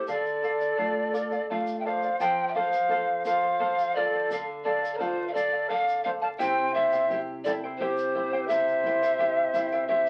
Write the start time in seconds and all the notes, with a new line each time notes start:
0.07 D3 A4 D5 F5, shaker
0.26 shaker
0.43 A4 D5 F5, shaker
0.60 D5 F5, shaker
0.78 A3 D4 F4 A4 D5 F5
1.13 A4 D5 F5, shaker
1.32 D5 F5, shaker
1.49 A3 D4 F4 A4 D5 F5
1.67 shaker
1.79 E5 G5
1.85 A4 C5 D5 F5
2.02 D5 F5, shaker
2.20 F3 A4 C5 F5 G5, shaker
2.48 E5 G5
2.54 F4 A4 C5 F5
2.72 C5 F5, shaker
2.89 A4 C5 F5, shaker
3.25 F4 A4 C5 F5, shaker
3.43 C5 F5
3.60 A4 C5 F5
3.79 shaker
3.95 F4 A4 C5 D5 F5
4.13 C5 F5
4.30 D3 A4 D5 F5, shaker
4.64 D4 A4 D5 F5
4.82 D5 F5, shaker
4.94 A#4 C5 D5
4.99 F4 A4 D5 F5, shaker
5.28 D5 F5
5.33 D4 A4 D5 F5, shaker
5.52 D5 F5
5.69 A4 D5 F5
5.88 shaker
6.04 D4 A4 C5 D5 F5
6.21 D5 F5 A5
6.39 C3 E4 G4 C5 E5 G5, shaker
6.74 E4 C5 E5 G5
6.92 E4 C5 G5, shaker
7.10 E4 G4 C5 E5 G5, shaker
7.44 E4 A4 C5 D5 E5 G5, shaker
7.64 E4 C5 G5
7.78 E4 G4 C5 E5 G5
7.98 shaker
8.15 E4 C5 E5 G5
8.33 E4 C5 G5
8.47 C3 E4 C5 E5 G5, shaker
8.68 shaker
8.83 E4 C5 E5 G5, shaker
9.02 E4 C5 G5, shaker
9.19 E4 G4 C5 E5 G5, shaker
9.54 E4 C5 E5 G5, shaker
9.72 E4 C5 G5, shaker
9.88 E4 G4 C5 C#5 E5 G5